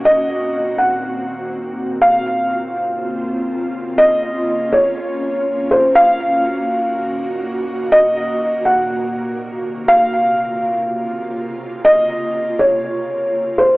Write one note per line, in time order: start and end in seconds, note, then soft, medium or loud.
0.00 1.98 A#2 medium
0.00 1.98 D#3 medium
0.00 1.98 A#3 medium
0.00 1.98 F#4 medium
0.05 2.00 C4 medium
0.05 0.75 D#5 loud
0.78 1.48 F#5 medium
2.02 5.91 C#3 medium
2.02 13.77 A#3 medium
2.02 3.96 C4 medium
2.02 5.91 F4 medium
2.02 3.94 F5 loud
3.98 7.88 C#4 medium
3.98 4.68 D#5 loud
4.72 5.67 C#5 medium
5.71 5.94 C5 medium
5.95 9.85 A#2 medium
5.95 9.85 D#3 medium
5.95 9.85 F#4 medium
5.95 7.88 F5 loud
7.92 13.77 C3 medium
7.92 8.62 D#5 loud
8.65 9.35 F#5 medium
9.88 13.77 C#3 medium
9.88 13.77 F4 medium
9.88 11.81 F5 loud
11.85 12.55 D#5 loud
12.59 13.54 C#5 medium
13.58 13.77 C5 medium